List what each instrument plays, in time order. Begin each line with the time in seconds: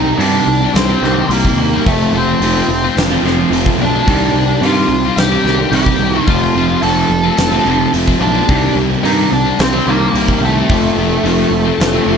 Already playing: picked electric bass C2, clean electric guitar C3 D#3, overdriven electric guitar C3 D#3 G3 C4 G4, distorted electric guitar D#3, lead electric guitar D#4 D#5
0.05 distorted electric guitar G3 C4 G4
0.18 picked electric bass G2, clean electric guitar C3 D#3 G3, overdriven electric guitar C3 D#3 G3 C4 G4, lead electric guitar D4 D5, open hi-hat
0.33 overdriven electric guitar G3 C4 G4
0.46 picked electric bass C2, clean electric guitar C3 D#3, muted overdriven electric guitar stroke
0.61 overdriven electric guitar G3 C4 G4, muted distorted electric guitar stroke
0.74 picked electric bass C2, clean electric guitar C3 D#3, lead electric guitar C4 C5, snare, open hi-hat
0.90 overdriven electric guitar G3 C4 G4
1.02 picked electric bass C2, clean electric guitar C3 D#3 G3, overdriven electric guitar D#3 G3 C4, snare
1.06 overdriven electric guitar G4
1.17 overdriven electric guitar G3 C4 G4, muted distorted electric guitar stroke
1.29 picked electric bass C2, clean electric guitar C3 D#3, overdriven electric guitar C3 D#3 G3, lead electric guitar A#3 A#4, open hi-hat
1.34 overdriven electric guitar C4 G4
1.45 overdriven electric guitar G3 C4 G4, kick
1.57 picked electric bass D#2, clean electric guitar C3 D#3, distorted electric guitar D#3 G3 C4 G4
1.73 overdriven electric guitar G3 C4 G4
1.85 picked electric bass F1, clean electric guitar F2 C3 F3, overdriven electric guitar F3 A3 C4, lead electric guitar A3 A4, kick, open hi-hat
1.90 overdriven electric guitar F4
2.13 picked electric bass F1, clean electric guitar F2 C3, overdriven electric guitar F3 A3 C4 F4
2.17 lead electric guitar C4 C5
2.28 distorted electric guitar A3 C4 F4
2.40 picked electric bass F1, clean electric guitar F2 C3 F3, overdriven electric guitar F3 A3 C4 F4, open hi-hat
2.56 overdriven electric guitar A3 C4 F4
2.69 picked electric bass F1, clean electric guitar F2 C3, muted overdriven electric guitar stroke
2.83 overdriven electric guitar A3 C4 F4, muted distorted electric guitar stroke
2.96 picked electric bass F1, clean electric guitar F2 C3, snare, open hi-hat
3.11 overdriven electric guitar A3 C4 F4
3.23 picked electric bass F1, clean electric guitar F2 C3 F3, overdriven electric guitar F3 A3 C4, snare
3.27 overdriven electric guitar F4
3.37 overdriven electric guitar C4 F4, muted distorted electric guitar stroke
3.41 overdriven electric guitar A3
3.51 picked electric bass F1, clean electric guitar F2 C3, overdriven electric guitar F3 A3, open hi-hat
3.55 overdriven electric guitar C4 F4
3.66 overdriven electric guitar A3 C4 F4, kick
3.78 picked electric bass B1, clean electric guitar F2 C3, distorted electric guitar F3 A3 C4 F4, lead electric guitar D4
3.84 lead electric guitar D5
3.95 overdriven electric guitar A3 C4 F4
4.07 picked electric bass C2, clean electric guitar C3 D#3 G3, overdriven electric guitar C3 D#3 G3 C4 G4, kick, open hi-hat
4.34 picked electric bass C2, clean electric guitar C3 D#3, overdriven electric guitar D#3 G3 C4 G4
4.47 distorted electric guitar G3 C4 G4
4.61 picked electric bass G2, clean electric guitar C3 D#3 G3, overdriven electric guitar C3 D#3 G3 C4, lead electric guitar F4, open hi-hat
4.65 overdriven electric guitar G4, lead electric guitar F5
4.77 overdriven electric guitar G3 C4 G4
4.88 picked electric bass C2, clean electric guitar C3 D#3, muted overdriven electric guitar stroke
5.02 overdriven electric guitar C4 G4, muted distorted electric guitar stroke
5.07 overdriven electric guitar G3
5.17 picked electric bass C2, clean electric guitar C3 D#3, lead electric guitar G4 G5, snare, open hi-hat
5.32 overdriven electric guitar G3 C4 G4
5.44 picked electric bass C2, clean electric guitar C3 D#3 G3, overdriven electric guitar D#3 G3 C4 G4, snare
5.58 overdriven electric guitar G3 C4 G4, muted distorted electric guitar stroke
5.72 picked electric bass C2, clean electric guitar C3 D#3, overdriven electric guitar C3 D#3 G3 C4 G4, lead electric guitar G4 G5, open hi-hat
5.86 overdriven electric guitar G3 C4 G4, kick
5.99 picked electric bass C2, clean electric guitar C3 D#3, distorted electric guitar D#3 G3 C4 G4
6.14 overdriven electric guitar G3 C4 G4
6.19 lead electric guitar F5
6.26 picked electric bass F1, clean electric guitar F2 C3 F3, overdriven electric guitar F3 A3 C4 F4, lead electric guitar F4 F5, kick, open hi-hat
6.54 picked electric bass F1, clean electric guitar F2 C3, overdriven electric guitar F3 A3 C4 F4
6.69 distorted electric guitar A3 C4 F4
6.81 picked electric bass F1, clean electric guitar F2 C3 F3, overdriven electric guitar F3 A3 C4, lead electric guitar A4 A5, open hi-hat
6.85 overdriven electric guitar F4
6.98 overdriven electric guitar A3 C4 F4
7.10 picked electric bass F1, clean electric guitar F2 C3, muted overdriven electric guitar stroke
7.24 overdriven electric guitar A3 C4 F4, muted distorted electric guitar stroke
7.37 picked electric bass F1, clean electric guitar F2 C3, snare, open hi-hat
7.53 overdriven electric guitar A3 C4 F4
7.65 picked electric bass F1, clean electric guitar F2 C3 F3, overdriven electric guitar F3 A3 C4 F4
7.79 overdriven electric guitar A3 C4 F4, muted distorted electric guitar stroke
7.93 picked electric bass F1, clean electric guitar F2 C3, overdriven electric guitar F3 A3 C4 F4, open hi-hat
8.07 overdriven electric guitar A3 C4 F4, kick
8.20 picked electric bass B1, clean electric guitar F2 C3, distorted electric guitar F3 A3 C4 F4, lead electric guitar D4 D5
8.34 overdriven electric guitar A3 C4 F4
8.48 picked electric bass C2, overdriven electric guitar C3 D#3 G3 C4 G4, clean electric guitar C3 D#3 G3, kick, open hi-hat
8.75 picked electric bass C2, clean electric guitar C3 D#3, overdriven electric guitar D#3 G3 C4 G4
8.90 distorted electric guitar G3 C4 G4
9.03 picked electric bass G2, overdriven electric guitar C3 D#3 G3 C4 G4, clean electric guitar C3 D#3 G3, lead electric guitar D#4 D#5, open hi-hat
9.17 overdriven electric guitar G3 C4 G4
9.32 picked electric bass C2, clean electric guitar C3 D#3, lead electric guitar D4 D5, muted overdriven electric guitar stroke
9.45 overdriven electric guitar G3 C4 G4, muted distorted electric guitar stroke
9.59 picked electric bass C2, clean electric guitar C3 D#3, lead electric guitar C4 C5, snare, open hi-hat
9.73 overdriven electric guitar G3 C4 G4
9.87 picked electric bass C2, clean electric guitar C3 D#3 G3, overdriven electric guitar D#3 G3 C4 G4, lead electric guitar A#3 A#4
10.01 overdriven electric guitar G3 C4 G4, muted distorted electric guitar stroke
10.14 picked electric bass C2, clean electric guitar C3 D#3, overdriven electric guitar C3 D#3 G3 C4 G4, open hi-hat
10.28 overdriven electric guitar G3 C4 G4, kick
10.41 picked electric bass C2, clean electric guitar C3 D#3, distorted electric guitar D#3 G3 C4 G4, lead electric guitar A3 A4
10.55 overdriven electric guitar G3 C4 G4
10.69 picked electric bass F1, clean electric guitar F2 C3 F3, overdriven electric guitar F3 A3 C4 F4, kick, open hi-hat
10.96 picked electric bass F1, clean electric guitar F2 C3, overdriven electric guitar F3 A3 C4 F4
11.11 distorted electric guitar A3 C4 F4
11.24 picked electric bass F1, clean electric guitar F2 C3 F3, overdriven electric guitar F3 A3 C4 F4, open hi-hat
11.38 overdriven electric guitar A3 C4 F4
11.51 picked electric bass F1, clean electric guitar F2 C3, muted overdriven electric guitar stroke
11.65 overdriven electric guitar A3 C4 F4, muted distorted electric guitar stroke
11.79 picked electric bass F1, clean electric guitar F2 C3, snare, open hi-hat
11.93 overdriven electric guitar A3 C4 F4
12.06 picked electric bass F1, clean electric guitar F2 C3 F3, overdriven electric guitar F3 A3 C4 F4